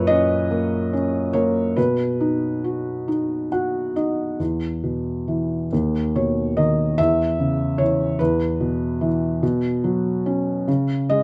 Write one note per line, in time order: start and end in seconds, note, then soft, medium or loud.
0.00 1.74 F#2 medium
0.00 1.31 A#2 medium
0.00 0.11 B4 medium
0.00 1.33 C#5 medium
0.07 0.92 C#4 medium
0.07 1.30 D#5 medium
0.51 1.33 A#3 soft
0.93 1.75 C#4 soft
1.33 1.76 A#3 soft
1.33 1.74 C#5 medium
1.76 4.36 B2 medium
1.76 3.48 B4 medium
2.21 3.06 D#4 soft
2.64 3.51 F#4 soft
3.08 3.95 D#4 soft
3.52 4.37 F#4 soft
3.52 3.93 F#5 soft
3.96 4.39 D#4 soft
3.96 4.37 D#5 soft
4.39 5.67 E2 soft
4.83 5.69 B2 soft
5.28 5.70 E3 soft
5.72 6.95 D#2 soft
6.15 6.96 B2 soft
6.15 6.59 C#5 medium
6.57 6.97 D#3 soft
6.57 7.00 D#5 medium
6.98 8.17 E2 medium
6.98 7.82 E5 medium
7.39 8.18 C#3 soft
7.78 8.19 E3 soft
7.78 8.16 C#5 medium
8.19 9.39 E2 medium
8.19 9.07 B4 medium
8.60 9.40 B2 soft
9.01 9.41 E3 medium
9.43 10.65 B2 medium
9.84 10.66 F#3 medium
10.26 10.67 C#4 medium
10.68 11.23 C#3 medium
11.09 11.23 G#3 soft
11.09 11.23 D#5 medium